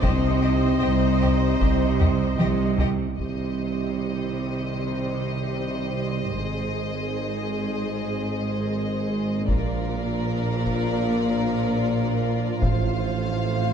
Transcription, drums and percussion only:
0.03 taiko
1.21 taiko low
1.61 taiko
2.00 taiko low-mid
2.39 taiko high
2.79 taiko low
3.18 taiko
9.48 taiko
10.66 taiko
12.62 taiko

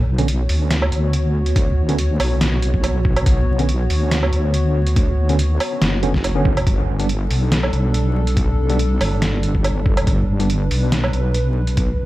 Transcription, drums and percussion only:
0.18 closed hi-hat
0.28 closed hi-hat
0.49 open hi-hat
0.71 snare, closed hi-hat
0.82 low woodblock
0.92 closed hi-hat
1.13 closed hi-hat
1.46 closed hi-hat
1.56 kick, closed hi-hat
1.89 closed hi-hat
1.98 closed hi-hat
2.20 open hi-hat, low woodblock
2.41 snare, closed hi-hat
2.62 closed hi-hat
2.74 kick
2.84 closed hi-hat, low woodblock
3.05 kick
3.16 closed hi-hat, low woodblock
3.26 kick, closed hi-hat
3.59 closed hi-hat
3.69 closed hi-hat
3.90 open hi-hat
4.11 snare, closed hi-hat
4.23 low woodblock
4.33 closed hi-hat
4.54 closed hi-hat
4.87 closed hi-hat
4.96 kick, closed hi-hat
5.29 closed hi-hat
5.39 closed hi-hat
5.60 open hi-hat, low woodblock
5.82 snare, closed hi-hat
6.03 closed hi-hat
6.14 kick, snare
6.24 closed hi-hat, low woodblock
6.45 kick
6.57 closed hi-hat, low woodblock
6.67 kick, closed hi-hat
7.00 closed hi-hat
7.09 closed hi-hat
7.30 open hi-hat
7.52 snare, closed hi-hat
7.63 low woodblock
7.73 closed hi-hat
7.94 closed hi-hat
8.27 closed hi-hat
8.37 kick, closed hi-hat
8.69 closed hi-hat
8.79 closed hi-hat
9.01 open hi-hat, low woodblock
9.22 snare, closed hi-hat
9.43 closed hi-hat
9.55 kick
9.64 closed hi-hat, low woodblock
9.86 kick
9.97 closed hi-hat, low woodblock
10.07 kick, closed hi-hat
10.40 closed hi-hat
10.50 closed hi-hat
10.71 open hi-hat
10.92 snare, closed hi-hat
11.04 low woodblock
11.13 closed hi-hat
11.34 closed hi-hat
11.67 closed hi-hat
11.77 kick, closed hi-hat

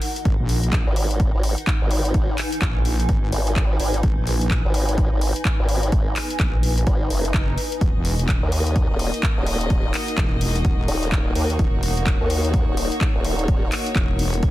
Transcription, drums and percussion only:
0.02 open hi-hat
0.16 closed hi-hat
0.25 kick, closed hi-hat
0.49 open hi-hat
0.63 closed hi-hat
0.73 kick, clap, closed hi-hat
0.96 open hi-hat
1.11 closed hi-hat
1.20 kick, closed hi-hat
1.43 open hi-hat
1.58 closed hi-hat
1.67 kick, clap, closed hi-hat
1.91 open hi-hat
2.05 closed hi-hat
2.14 kick, closed hi-hat
2.38 clap, open hi-hat
2.52 closed hi-hat
2.61 kick, clap, closed hi-hat
2.85 open hi-hat
3.00 closed hi-hat
3.09 kick, closed hi-hat
3.32 open hi-hat
3.47 closed hi-hat
3.56 kick, clap, closed hi-hat
3.80 open hi-hat
3.94 closed hi-hat
4.03 kick, closed hi-hat
4.27 open hi-hat
4.41 closed hi-hat
4.51 kick, clap, closed hi-hat
4.74 open hi-hat
4.89 closed hi-hat
4.98 kick, closed hi-hat
5.21 open hi-hat
5.36 closed hi-hat
5.45 kick, clap, closed hi-hat
5.69 open hi-hat
5.83 closed hi-hat
5.92 kick, closed hi-hat
6.16 clap, open hi-hat
6.30 closed hi-hat
6.39 kick, clap, closed hi-hat
6.63 open hi-hat
6.78 closed hi-hat
6.87 kick, closed hi-hat
7.10 open hi-hat
7.25 closed hi-hat
7.34 kick, clap, closed hi-hat
7.58 open hi-hat
7.72 closed hi-hat
7.81 kick, closed hi-hat
8.05 open hi-hat
8.19 closed hi-hat
8.28 kick, clap, closed hi-hat
8.52 open hi-hat
8.67 closed hi-hat
8.76 kick, closed hi-hat
8.99 open hi-hat
9.14 closed hi-hat
9.23 kick, clap, closed hi-hat
9.47 open hi-hat
9.61 closed hi-hat
9.70 kick, closed hi-hat
9.94 clap, open hi-hat
10.08 closed hi-hat
10.17 kick, clap, closed hi-hat
10.41 open hi-hat
10.56 closed hi-hat
10.65 kick, closed hi-hat
10.88 open hi-hat
11.03 closed hi-hat
11.12 kick, clap, closed hi-hat
11.35 open hi-hat
11.50 closed hi-hat
11.59 kick, closed hi-hat
11.83 open hi-hat
11.97 closed hi-hat
12.06 kick, clap, closed hi-hat
12.30 open hi-hat
12.45 closed hi-hat
12.54 kick, closed hi-hat
12.77 open hi-hat
12.92 closed hi-hat
13.01 kick, clap, closed hi-hat
13.25 open hi-hat
13.39 closed hi-hat
13.48 kick, closed hi-hat
13.72 clap, open hi-hat
13.86 closed hi-hat
13.95 kick, clap, closed hi-hat
14.19 open hi-hat
14.34 closed hi-hat
14.43 kick, closed hi-hat

